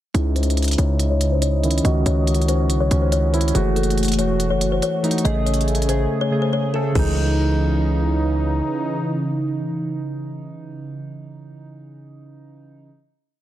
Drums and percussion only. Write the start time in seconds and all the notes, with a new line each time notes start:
0.15 closed hi-hat
0.36 closed hi-hat
0.43 closed hi-hat
0.50 closed hi-hat
0.57 closed hi-hat
0.62 closed hi-hat
0.64 closed hi-hat
0.68 closed hi-hat
0.71 closed hi-hat
0.73 closed hi-hat
0.78 closed hi-hat
0.99 closed hi-hat
1.21 closed hi-hat
1.42 closed hi-hat
1.64 closed hi-hat
1.71 closed hi-hat
1.78 closed hi-hat
1.85 closed hi-hat
2.06 closed hi-hat
2.27 closed hi-hat
2.34 closed hi-hat
2.42 closed hi-hat
2.48 closed hi-hat
2.70 closed hi-hat
2.91 closed hi-hat
3.12 closed hi-hat
3.34 closed hi-hat
3.41 closed hi-hat
3.48 closed hi-hat
3.55 closed hi-hat
3.76 closed hi-hat
3.83 closed hi-hat
3.90 closed hi-hat
3.98 closed hi-hat
4.03 closed hi-hat
4.05 closed hi-hat
4.08 closed hi-hat
4.12 closed hi-hat
4.13 closed hi-hat
4.19 closed hi-hat
4.40 closed hi-hat
4.61 closed hi-hat
4.82 closed hi-hat
5.04 closed hi-hat
5.11 closed hi-hat
5.18 closed hi-hat
5.25 closed hi-hat
5.46 closed hi-hat
5.54 closed hi-hat
5.61 closed hi-hat
5.68 closed hi-hat
5.75 closed hi-hat
5.82 closed hi-hat
5.89 closed hi-hat
6.95 kick, crash